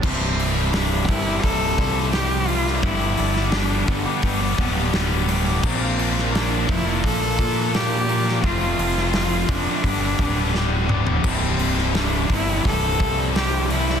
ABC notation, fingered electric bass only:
X:1
M:4/4
L:1/16
Q:1/4=86
K:C
V:1 name="Fingered electric bass" clef=bass
C,,,6 G,,,2 C,,,2 C,,6 | G,,,2 G,,,4 G,,, z G,,,2 D,,,6 | _B,,,6 F,,,2 B,,,2 _B,,6 | F,,,2 F,,,4 F,,, z G,,,2 D,,,6 |
C,,,6 G,,,2 C,,,2 C,,6 |]